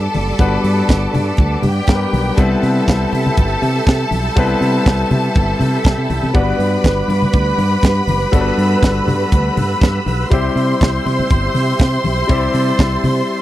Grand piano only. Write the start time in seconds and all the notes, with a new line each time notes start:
Already playing: G3 B3 D4 F#4 B4 E5
0.39 G3 B3 D4 F#4 B4
1.88 G3 B3 D4 G4 A#4
1.95 B4
2.37 G3 B3 C4 E4 B4
4.36 G3 B3 C4 E4 B4
6.34 G3 B3 D4 F#4 B4
8.32 G3 B3 D4 F#4 A4
8.41 B4
10.30 G3 C4 E4 G4 C5
12.27 G3 C4 E4 G4 C5